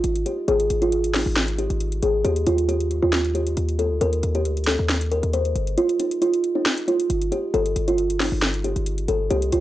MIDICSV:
0, 0, Header, 1, 4, 480
1, 0, Start_track
1, 0, Tempo, 441176
1, 523, Time_signature, 4, 2, 24, 8
1, 10448, End_track
2, 0, Start_track
2, 0, Title_t, "Kalimba"
2, 0, Program_c, 0, 108
2, 0, Note_on_c, 0, 65, 98
2, 254, Note_off_c, 0, 65, 0
2, 282, Note_on_c, 0, 67, 77
2, 508, Note_off_c, 0, 67, 0
2, 522, Note_on_c, 0, 68, 108
2, 867, Note_off_c, 0, 68, 0
2, 889, Note_on_c, 0, 65, 85
2, 996, Note_off_c, 0, 65, 0
2, 1243, Note_on_c, 0, 63, 82
2, 1694, Note_off_c, 0, 63, 0
2, 1723, Note_on_c, 0, 67, 77
2, 2174, Note_off_c, 0, 67, 0
2, 2204, Note_on_c, 0, 68, 82
2, 2429, Note_off_c, 0, 68, 0
2, 2444, Note_on_c, 0, 67, 111
2, 2669, Note_off_c, 0, 67, 0
2, 2684, Note_on_c, 0, 65, 88
2, 2909, Note_off_c, 0, 65, 0
2, 2923, Note_on_c, 0, 67, 94
2, 3268, Note_off_c, 0, 67, 0
2, 3291, Note_on_c, 0, 65, 93
2, 3622, Note_off_c, 0, 65, 0
2, 3643, Note_on_c, 0, 67, 86
2, 4094, Note_off_c, 0, 67, 0
2, 4122, Note_on_c, 0, 69, 81
2, 4348, Note_off_c, 0, 69, 0
2, 4363, Note_on_c, 0, 70, 101
2, 4709, Note_off_c, 0, 70, 0
2, 4732, Note_on_c, 0, 67, 91
2, 4837, Note_off_c, 0, 67, 0
2, 5085, Note_on_c, 0, 69, 74
2, 5310, Note_off_c, 0, 69, 0
2, 5565, Note_on_c, 0, 70, 82
2, 5790, Note_off_c, 0, 70, 0
2, 5805, Note_on_c, 0, 72, 84
2, 6030, Note_off_c, 0, 72, 0
2, 6284, Note_on_c, 0, 65, 107
2, 6509, Note_off_c, 0, 65, 0
2, 6524, Note_on_c, 0, 63, 69
2, 6749, Note_off_c, 0, 63, 0
2, 6764, Note_on_c, 0, 65, 83
2, 7109, Note_off_c, 0, 65, 0
2, 7129, Note_on_c, 0, 63, 84
2, 7462, Note_off_c, 0, 63, 0
2, 7483, Note_on_c, 0, 65, 86
2, 7934, Note_off_c, 0, 65, 0
2, 7962, Note_on_c, 0, 67, 84
2, 8188, Note_off_c, 0, 67, 0
2, 8202, Note_on_c, 0, 69, 106
2, 8548, Note_off_c, 0, 69, 0
2, 8571, Note_on_c, 0, 65, 83
2, 8677, Note_off_c, 0, 65, 0
2, 8923, Note_on_c, 0, 63, 88
2, 9374, Note_off_c, 0, 63, 0
2, 9403, Note_on_c, 0, 67, 79
2, 9854, Note_off_c, 0, 67, 0
2, 9883, Note_on_c, 0, 69, 81
2, 10109, Note_off_c, 0, 69, 0
2, 10123, Note_on_c, 0, 67, 116
2, 10349, Note_off_c, 0, 67, 0
2, 10364, Note_on_c, 0, 65, 87
2, 10448, Note_off_c, 0, 65, 0
2, 10448, End_track
3, 0, Start_track
3, 0, Title_t, "808-style bass"
3, 0, Program_c, 1, 38
3, 44, Note_on_c, 1, 32, 108
3, 274, Note_off_c, 1, 32, 0
3, 522, Note_on_c, 1, 32, 111
3, 753, Note_off_c, 1, 32, 0
3, 763, Note_on_c, 1, 32, 101
3, 1346, Note_off_c, 1, 32, 0
3, 1371, Note_on_c, 1, 32, 106
3, 1831, Note_off_c, 1, 32, 0
3, 1850, Note_on_c, 1, 32, 105
3, 2189, Note_off_c, 1, 32, 0
3, 2204, Note_on_c, 1, 32, 105
3, 2434, Note_off_c, 1, 32, 0
3, 2443, Note_on_c, 1, 39, 108
3, 2674, Note_off_c, 1, 39, 0
3, 2683, Note_on_c, 1, 39, 105
3, 3266, Note_off_c, 1, 39, 0
3, 3291, Note_on_c, 1, 39, 104
3, 3860, Note_off_c, 1, 39, 0
3, 3884, Note_on_c, 1, 39, 106
3, 4251, Note_on_c, 1, 38, 102
3, 4267, Note_off_c, 1, 39, 0
3, 4358, Note_off_c, 1, 38, 0
3, 4364, Note_on_c, 1, 39, 113
3, 4594, Note_off_c, 1, 39, 0
3, 4604, Note_on_c, 1, 39, 112
3, 4844, Note_on_c, 1, 38, 105
3, 4860, Note_off_c, 1, 39, 0
3, 5192, Note_off_c, 1, 38, 0
3, 5211, Note_on_c, 1, 39, 107
3, 5672, Note_off_c, 1, 39, 0
3, 5691, Note_on_c, 1, 39, 105
3, 6029, Note_off_c, 1, 39, 0
3, 6043, Note_on_c, 1, 31, 103
3, 6274, Note_off_c, 1, 31, 0
3, 7724, Note_on_c, 1, 31, 107
3, 7954, Note_off_c, 1, 31, 0
3, 8204, Note_on_c, 1, 31, 111
3, 8434, Note_off_c, 1, 31, 0
3, 8444, Note_on_c, 1, 31, 106
3, 9026, Note_off_c, 1, 31, 0
3, 9051, Note_on_c, 1, 31, 105
3, 9512, Note_off_c, 1, 31, 0
3, 9531, Note_on_c, 1, 31, 104
3, 9869, Note_off_c, 1, 31, 0
3, 9884, Note_on_c, 1, 31, 100
3, 10114, Note_off_c, 1, 31, 0
3, 10124, Note_on_c, 1, 36, 109
3, 10354, Note_off_c, 1, 36, 0
3, 10364, Note_on_c, 1, 36, 104
3, 10448, Note_off_c, 1, 36, 0
3, 10448, End_track
4, 0, Start_track
4, 0, Title_t, "Drums"
4, 41, Note_on_c, 9, 42, 86
4, 150, Note_off_c, 9, 42, 0
4, 169, Note_on_c, 9, 42, 59
4, 278, Note_off_c, 9, 42, 0
4, 282, Note_on_c, 9, 42, 70
4, 391, Note_off_c, 9, 42, 0
4, 523, Note_on_c, 9, 42, 75
4, 632, Note_off_c, 9, 42, 0
4, 650, Note_on_c, 9, 42, 61
4, 759, Note_off_c, 9, 42, 0
4, 762, Note_on_c, 9, 42, 99
4, 871, Note_off_c, 9, 42, 0
4, 890, Note_on_c, 9, 42, 55
4, 999, Note_off_c, 9, 42, 0
4, 1004, Note_on_c, 9, 42, 73
4, 1112, Note_off_c, 9, 42, 0
4, 1133, Note_on_c, 9, 42, 66
4, 1241, Note_off_c, 9, 42, 0
4, 1244, Note_on_c, 9, 38, 98
4, 1244, Note_on_c, 9, 46, 81
4, 1353, Note_off_c, 9, 38, 0
4, 1353, Note_off_c, 9, 46, 0
4, 1483, Note_on_c, 9, 42, 74
4, 1484, Note_on_c, 9, 38, 117
4, 1592, Note_off_c, 9, 42, 0
4, 1593, Note_off_c, 9, 38, 0
4, 1612, Note_on_c, 9, 42, 59
4, 1720, Note_off_c, 9, 42, 0
4, 1725, Note_on_c, 9, 42, 64
4, 1834, Note_off_c, 9, 42, 0
4, 1851, Note_on_c, 9, 42, 61
4, 1960, Note_off_c, 9, 42, 0
4, 1963, Note_on_c, 9, 42, 85
4, 2072, Note_off_c, 9, 42, 0
4, 2090, Note_on_c, 9, 42, 58
4, 2198, Note_off_c, 9, 42, 0
4, 2204, Note_on_c, 9, 42, 69
4, 2312, Note_off_c, 9, 42, 0
4, 2443, Note_on_c, 9, 42, 75
4, 2552, Note_off_c, 9, 42, 0
4, 2570, Note_on_c, 9, 42, 58
4, 2678, Note_off_c, 9, 42, 0
4, 2682, Note_on_c, 9, 42, 95
4, 2791, Note_off_c, 9, 42, 0
4, 2810, Note_on_c, 9, 42, 56
4, 2919, Note_off_c, 9, 42, 0
4, 2923, Note_on_c, 9, 42, 74
4, 3032, Note_off_c, 9, 42, 0
4, 3051, Note_on_c, 9, 42, 67
4, 3160, Note_off_c, 9, 42, 0
4, 3164, Note_on_c, 9, 42, 56
4, 3272, Note_off_c, 9, 42, 0
4, 3403, Note_on_c, 9, 38, 118
4, 3403, Note_on_c, 9, 42, 78
4, 3511, Note_off_c, 9, 42, 0
4, 3512, Note_off_c, 9, 38, 0
4, 3532, Note_on_c, 9, 42, 59
4, 3641, Note_off_c, 9, 42, 0
4, 3645, Note_on_c, 9, 42, 66
4, 3753, Note_off_c, 9, 42, 0
4, 3771, Note_on_c, 9, 42, 60
4, 3880, Note_off_c, 9, 42, 0
4, 3883, Note_on_c, 9, 42, 86
4, 3992, Note_off_c, 9, 42, 0
4, 4010, Note_on_c, 9, 42, 60
4, 4119, Note_off_c, 9, 42, 0
4, 4124, Note_on_c, 9, 42, 67
4, 4233, Note_off_c, 9, 42, 0
4, 4364, Note_on_c, 9, 42, 78
4, 4473, Note_off_c, 9, 42, 0
4, 4491, Note_on_c, 9, 42, 58
4, 4600, Note_off_c, 9, 42, 0
4, 4603, Note_on_c, 9, 42, 100
4, 4712, Note_off_c, 9, 42, 0
4, 4731, Note_on_c, 9, 42, 56
4, 4839, Note_off_c, 9, 42, 0
4, 4844, Note_on_c, 9, 42, 73
4, 4953, Note_off_c, 9, 42, 0
4, 4972, Note_on_c, 9, 42, 57
4, 5046, Note_off_c, 9, 42, 0
4, 5046, Note_on_c, 9, 42, 59
4, 5084, Note_on_c, 9, 38, 97
4, 5084, Note_on_c, 9, 46, 80
4, 5126, Note_off_c, 9, 42, 0
4, 5126, Note_on_c, 9, 42, 58
4, 5193, Note_off_c, 9, 38, 0
4, 5193, Note_off_c, 9, 46, 0
4, 5235, Note_off_c, 9, 42, 0
4, 5323, Note_on_c, 9, 38, 119
4, 5323, Note_on_c, 9, 42, 75
4, 5432, Note_off_c, 9, 38, 0
4, 5432, Note_off_c, 9, 42, 0
4, 5452, Note_on_c, 9, 42, 61
4, 5561, Note_off_c, 9, 42, 0
4, 5566, Note_on_c, 9, 42, 67
4, 5674, Note_off_c, 9, 42, 0
4, 5692, Note_on_c, 9, 42, 61
4, 5801, Note_off_c, 9, 42, 0
4, 5803, Note_on_c, 9, 42, 84
4, 5912, Note_off_c, 9, 42, 0
4, 5930, Note_on_c, 9, 42, 57
4, 6039, Note_off_c, 9, 42, 0
4, 6044, Note_on_c, 9, 42, 61
4, 6153, Note_off_c, 9, 42, 0
4, 6171, Note_on_c, 9, 42, 55
4, 6280, Note_off_c, 9, 42, 0
4, 6284, Note_on_c, 9, 42, 75
4, 6393, Note_off_c, 9, 42, 0
4, 6410, Note_on_c, 9, 42, 58
4, 6519, Note_off_c, 9, 42, 0
4, 6523, Note_on_c, 9, 42, 97
4, 6632, Note_off_c, 9, 42, 0
4, 6651, Note_on_c, 9, 42, 60
4, 6760, Note_off_c, 9, 42, 0
4, 6764, Note_on_c, 9, 42, 72
4, 6873, Note_off_c, 9, 42, 0
4, 6893, Note_on_c, 9, 42, 69
4, 7002, Note_off_c, 9, 42, 0
4, 7005, Note_on_c, 9, 42, 56
4, 7114, Note_off_c, 9, 42, 0
4, 7243, Note_on_c, 9, 42, 73
4, 7244, Note_on_c, 9, 38, 115
4, 7352, Note_off_c, 9, 42, 0
4, 7353, Note_off_c, 9, 38, 0
4, 7372, Note_on_c, 9, 42, 59
4, 7481, Note_off_c, 9, 42, 0
4, 7485, Note_on_c, 9, 42, 65
4, 7594, Note_off_c, 9, 42, 0
4, 7612, Note_on_c, 9, 42, 60
4, 7721, Note_off_c, 9, 42, 0
4, 7723, Note_on_c, 9, 42, 85
4, 7832, Note_off_c, 9, 42, 0
4, 7850, Note_on_c, 9, 42, 61
4, 7959, Note_off_c, 9, 42, 0
4, 7964, Note_on_c, 9, 42, 70
4, 8073, Note_off_c, 9, 42, 0
4, 8204, Note_on_c, 9, 42, 78
4, 8313, Note_off_c, 9, 42, 0
4, 8331, Note_on_c, 9, 42, 59
4, 8440, Note_off_c, 9, 42, 0
4, 8443, Note_on_c, 9, 42, 97
4, 8552, Note_off_c, 9, 42, 0
4, 8571, Note_on_c, 9, 42, 57
4, 8680, Note_off_c, 9, 42, 0
4, 8684, Note_on_c, 9, 42, 73
4, 8793, Note_off_c, 9, 42, 0
4, 8812, Note_on_c, 9, 42, 69
4, 8921, Note_off_c, 9, 42, 0
4, 8924, Note_on_c, 9, 38, 99
4, 8924, Note_on_c, 9, 46, 82
4, 9033, Note_off_c, 9, 38, 0
4, 9033, Note_off_c, 9, 46, 0
4, 9163, Note_on_c, 9, 42, 75
4, 9164, Note_on_c, 9, 38, 117
4, 9272, Note_off_c, 9, 38, 0
4, 9272, Note_off_c, 9, 42, 0
4, 9291, Note_on_c, 9, 42, 61
4, 9400, Note_off_c, 9, 42, 0
4, 9405, Note_on_c, 9, 42, 65
4, 9513, Note_off_c, 9, 42, 0
4, 9531, Note_on_c, 9, 42, 61
4, 9640, Note_off_c, 9, 42, 0
4, 9642, Note_on_c, 9, 42, 85
4, 9751, Note_off_c, 9, 42, 0
4, 9770, Note_on_c, 9, 42, 58
4, 9878, Note_off_c, 9, 42, 0
4, 9883, Note_on_c, 9, 42, 72
4, 9992, Note_off_c, 9, 42, 0
4, 10124, Note_on_c, 9, 42, 77
4, 10232, Note_off_c, 9, 42, 0
4, 10250, Note_on_c, 9, 42, 57
4, 10359, Note_off_c, 9, 42, 0
4, 10362, Note_on_c, 9, 42, 99
4, 10448, Note_off_c, 9, 42, 0
4, 10448, End_track
0, 0, End_of_file